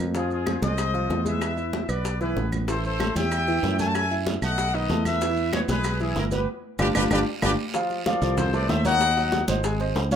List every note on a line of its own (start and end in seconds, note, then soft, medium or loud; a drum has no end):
0.00 0.57 F2 medium
0.15 0.41 F3 medium
0.15 0.30 F4 medium
0.15 0.42 F4 medium
0.15 0.30 G#4 medium
0.15 high bongo medium
0.15 high conga soft
0.15 maracas medium
0.31 0.61 F4 medium
0.31 0.61 G#4 medium
0.31 high conga soft
0.31 maracas soft
0.46 0.60 C4 medium
0.46 0.60 C5 medium
0.46 high bongo medium
0.46 high conga medium
0.46 claves medium
0.46 maracas soft
0.62 1.07 C2 medium
0.62 0.88 G#3 medium
0.62 0.89 G#4 medium
0.62 1.22 C5 medium
0.62 1.22 D#5 medium
0.62 high bongo soft
0.62 high conga medium
0.62 maracas medium
0.78 high bongo medium
0.78 high conga soft
0.78 claves medium
0.78 maracas medium
0.94 1.20 F3 medium
0.94 1.20 F4 medium
0.94 high bongo soft
0.94 high conga soft
0.94 maracas soft
1.10 1.83 E2 medium
1.10 high bongo soft
1.10 low bongo medium
1.10 high conga medium
1.10 maracas soft
1.25 1.51 G#3 medium
1.25 1.52 G#4 medium
1.25 1.79 B4 medium
1.25 1.78 E5 medium
1.25 high bongo soft
1.25 high conga medium
1.25 maracas medium
1.41 high bongo medium
1.41 high conga soft
1.41 claves medium
1.41 maracas medium
1.57 1.83 E4 medium
1.57 1.83 E5 medium
1.57 high conga soft
1.57 maracas soft
1.73 high bongo medium
1.73 high conga medium
1.73 maracas soft
1.82 1.89 E5 medium
1.89 2.33 B1 medium
1.89 2.15 B3 medium
1.89 2.15 B4 medium
1.89 2.20 B4 medium
1.89 2.21 D5 medium
1.89 high bongo soft
1.89 high conga soft
1.89 claves medium
1.89 maracas medium
2.05 high bongo medium
2.05 high conga soft
2.05 maracas medium
2.21 2.34 E3 medium
2.21 2.34 E4 medium
2.21 2.51 G#4 medium
2.21 2.50 B4 medium
2.21 high bongo soft
2.21 high conga soft
2.21 maracas soft
2.36 3.10 A1 medium
2.36 2.62 B3 medium
2.36 2.63 B4 medium
2.36 high bongo soft
2.36 low bongo medium
2.36 high conga medium
2.36 maracas soft
2.52 high bongo soft
2.52 high conga medium
2.52 claves medium
2.52 maracas medium
2.68 2.94 E3 medium
2.68 2.94 E4 medium
2.68 2.83 A4 medium
2.68 2.83 C5 medium
2.68 high bongo medium
2.68 high conga soft
2.68 long guiro medium
2.68 maracas medium
2.84 3.14 A4 medium
2.84 3.14 C5 medium
2.84 high conga soft
2.84 maracas soft
3.00 3.13 A3 medium
3.00 3.13 A4 medium
3.00 high bongo medium
3.00 high conga medium
3.00 short guiro medium
3.00 claves medium
3.00 maracas soft
3.16 3.60 E2 medium
3.16 3.42 G3 medium
3.16 3.42 G4 medium
3.16 3.75 E5 medium
3.16 3.75 G5 loud
3.16 high bongo soft
3.16 high conga medium
3.16 short guiro medium
3.16 maracas medium
3.32 high bongo medium
3.32 high conga soft
3.32 long guiro medium
3.32 claves medium
3.32 maracas medium
3.48 3.74 E3 medium
3.48 3.74 E4 medium
3.48 high bongo soft
3.48 high conga soft
3.48 maracas soft
3.63 4.37 F#2 medium
3.63 high bongo soft
3.63 low bongo medium
3.63 high conga medium
3.63 short guiro medium
3.63 maracas soft
3.79 4.05 A3 medium
3.79 4.05 A4 medium
3.79 3.87 E5 medium
3.79 3.86 G#5 loud
3.79 high bongo soft
3.79 high conga medium
3.79 short guiro medium
3.79 maracas medium
3.87 3.93 A5 medium
3.94 4.16 E5 medium
3.94 4.16 G#5 medium
3.94 high bongo medium
3.94 high conga soft
3.94 long guiro medium
3.94 claves medium
3.94 maracas medium
4.11 4.37 E4 medium
4.11 4.37 E5 medium
4.11 high conga soft
4.11 maracas soft
4.27 high bongo medium
4.27 high conga medium
4.27 short guiro medium
4.27 maracas soft
4.42 4.86 B1 medium
4.42 4.69 A3 medium
4.42 4.69 A4 medium
4.42 4.73 D#5 medium
4.42 4.72 F#5 loud
4.42 high bongo soft
4.42 short guiro medium
4.42 claves medium
4.42 maracas medium
4.58 high bongo medium
4.58 high conga soft
4.58 long guiro medium
4.58 maracas medium
4.74 4.87 D#3 medium
4.74 4.87 D#4 medium
4.74 5.05 B4 medium
4.74 5.06 D#5 medium
4.74 high bongo soft
4.74 high conga soft
4.74 maracas soft
4.90 5.63 E2 medium
4.90 5.16 A3 medium
4.90 5.16 A4 medium
4.90 high bongo soft
4.90 low bongo medium
4.90 high conga medium
4.90 short guiro medium
4.90 maracas soft
5.05 5.50 B4 medium
5.05 5.50 E5 loud
5.05 high bongo soft
5.05 high conga medium
5.05 short guiro medium
5.05 claves medium
5.05 maracas medium
5.21 5.48 E3 medium
5.21 5.48 E4 medium
5.21 high bongo medium
5.21 high conga soft
5.21 long guiro medium
5.21 maracas medium
5.37 high conga soft
5.37 maracas soft
5.53 5.66 B3 medium
5.53 5.61 G#4 medium
5.53 5.66 B4 medium
5.53 5.60 C#5 medium
5.53 high bongo medium
5.53 high conga medium
5.53 short guiro medium
5.53 claves medium
5.53 maracas soft
5.68 6.13 B1 medium
5.68 5.95 G#3 medium
5.68 5.95 G#4 medium
5.68 5.99 G#4 medium
5.68 5.99 B4 loud
5.68 high bongo soft
5.68 high conga medium
5.68 short guiro medium
5.68 maracas medium
5.84 high bongo medium
5.84 high conga soft
5.84 long guiro medium
5.84 claves medium
5.84 maracas medium
6.00 6.26 E3 medium
6.00 6.27 E4 medium
6.00 6.16 E4 medium
6.00 6.16 G#4 medium
6.00 high bongo soft
6.00 high conga soft
6.00 maracas soft
6.16 6.45 G1 medium
6.16 6.24 E4 medium
6.16 6.24 A#4 medium
6.16 high bongo soft
6.16 low bongo medium
6.16 high conga medium
6.16 short guiro medium
6.16 maracas soft
6.31 6.45 B3 medium
6.31 6.47 G4 medium
6.31 6.45 B4 medium
6.31 6.47 B4 medium
6.31 high bongo soft
6.31 high conga medium
6.31 short guiro medium
6.31 maracas medium
6.79 6.91 G1 medium
6.79 6.90 D4 medium
6.79 6.90 F4 medium
6.79 6.90 G4 loud
6.79 6.87 G4 medium
6.79 6.87 B4 medium
6.79 6.87 D5 medium
6.79 low bongo loud
6.79 high conga medium
6.79 long guiro medium
6.79 claves medium
6.79 maracas medium
6.95 7.07 G1 medium
6.95 7.06 D4 medium
6.95 7.06 F4 medium
6.95 7.03 G4 medium
6.95 7.06 G4 medium
6.95 7.03 B4 medium
6.95 7.03 D5 medium
6.95 low bongo medium
6.95 high conga medium
6.95 long guiro loud
6.95 claves loud
6.95 maracas loud
7.11 7.23 G1 medium
7.11 7.22 D4 loud
7.11 7.22 F4 medium
7.11 7.19 G4 medium
7.11 7.22 G4 loud
7.11 7.19 B4 medium
7.11 7.19 D5 loud
7.11 low bongo medium
7.11 high conga medium
7.11 long guiro medium
7.11 claves medium
7.11 maracas loud
7.42 7.55 G1 loud
7.42 7.53 D4 medium
7.42 7.53 F4 medium
7.42 7.53 G4 medium
7.42 7.51 G4 medium
7.42 7.51 B4 medium
7.42 7.51 D5 medium
7.42 low bongo medium
7.42 high conga loud
7.42 long guiro medium
7.42 claves medium
7.42 maracas medium
7.74 8.01 F3 medium
7.74 8.01 F4 medium
7.74 8.01 F5 medium
7.74 high bongo medium
7.74 high conga soft
7.74 long guiro medium
7.74 maracas medium
7.90 high bongo soft
7.90 high conga soft
7.90 maracas soft
8.06 8.19 F3 medium
8.06 8.19 F4 medium
8.06 8.36 A4 medium
8.06 8.36 D5 medium
8.06 8.19 F5 medium
8.06 high bongo medium
8.06 high conga medium
8.06 short guiro medium
8.06 maracas soft
8.22 8.66 C2 medium
8.22 8.48 F3 medium
8.22 8.48 F4 medium
8.22 8.48 F5 medium
8.22 high conga soft
8.22 short guiro medium
8.22 maracas medium
8.38 8.53 A4 medium
8.38 8.52 C5 medium
8.38 high bongo medium
8.38 high conga soft
8.38 low conga medium
8.38 long guiro medium
8.38 maracas medium
8.53 8.79 A3 medium
8.53 8.80 A4 medium
8.53 8.69 B4 medium
8.53 8.80 C5 medium
8.53 8.68 D5 medium
8.53 high bongo soft
8.53 high conga soft
8.53 maracas soft
8.69 9.43 D#2 medium
8.69 8.85 C5 medium
8.69 8.85 E5 loud
8.69 high bongo soft
8.69 low bongo medium
8.69 high conga medium
8.69 short guiro medium
8.69 maracas soft
8.85 9.11 A#3 medium
8.85 9.11 A#4 medium
8.85 9.11 C#5 medium
8.85 9.45 D#5 medium
8.85 9.45 F#5 loud
8.85 high bongo soft
8.85 high conga medium
8.85 short guiro medium
8.85 maracas medium
9.01 high bongo medium
9.01 high conga soft
9.01 long guiro medium
9.01 maracas medium
9.17 9.43 F#3 medium
9.17 9.43 F#4 medium
9.17 9.43 F#5 medium
9.17 high bongo soft
9.17 high conga soft
9.17 maracas soft
9.32 high bongo medium
9.32 high conga medium
9.32 short guiro medium
9.32 maracas soft
9.48 9.92 G#1 medium
9.48 9.62 C4 medium
9.48 9.62 C5 medium
9.48 9.62 D#5 medium
9.48 high conga loud
9.48 short guiro medium
9.48 maracas medium
9.64 9.78 G#3 medium
9.64 9.78 G#4 medium
9.64 9.78 G#5 medium
9.64 high bongo medium
9.64 high conga soft
9.64 long guiro medium
9.64 maracas loud
9.80 10.06 C4 medium
9.80 10.06 C5 medium
9.80 10.06 D#5 medium
9.80 high bongo soft
9.80 high conga soft
9.80 maracas soft
9.95 10.16 C#2 medium
9.95 high bongo soft
9.95 low bongo medium
9.95 high conga soft
9.95 short guiro medium
9.95 maracas soft
10.11 10.16 C#4 medium
10.11 10.16 C#5 medium
10.11 10.16 F5 medium
10.11 high bongo soft
10.11 high conga medium
10.11 short guiro medium
10.11 maracas medium